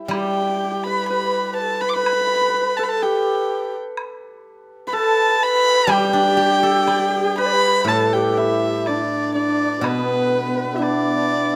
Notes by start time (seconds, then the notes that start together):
Already playing: E4 G4
0.08 G3 G4 G5, high woodblock
0.13 G4
0.19 G4
0.25 G4
0.34 G4
0.42 G4
0.49 G4
0.56 G4
0.64 G4
0.72 G4
0.84 B4 B5
1.08 B4 B5
1.57 A4 A5
1.81 B4 B5
1.89 D6
1.94 B4 B5
2.03 B4, high woodblock
2.13 B4
2.21 B4
2.27 B4
2.36 B4
2.41 B4
2.48 B4
2.54 B4
2.62 B4
2.77 A4 A5
2.83 B5
2.90 A5
3.02 G4 G5
3.97 high woodblock
4.87 B4 B5
4.93 A4 A5
5.42 B4 B5
5.87 G3 G4, high woodblock
5.91 G5
5.98 G4
6.05 G4
6.09 D4 G4
6.17 G4
6.23 G4
6.30 G4
6.37 G4
6.45 G4
6.54 G4
6.62 G4 A4
6.70 G4
6.78 G4
6.86 G4 D5, high woodblock
6.94 G4
6.99 G4
7.10 G4
7.17 G4
7.24 G4
7.37 B4 B5
7.45 D5
7.53 B4
7.84 A2 A4, high woodblock
7.89 A5
8.12 G4 G5
8.30 G4
8.37 E4 E5
8.86 D4 D5, high woodblock
8.95 E4
9.03 D4
9.35 D4 D5
9.79 B2 D5
9.84 B3 B4, high woodblock
9.91 B3
9.99 B3
10.05 B3
10.13 B3
10.21 B3
10.29 B3
10.34 B3
10.41 B3
10.48 B3
10.55 B3
10.63 B3
10.74 E4 E5
10.79 D4 D5, high woodblock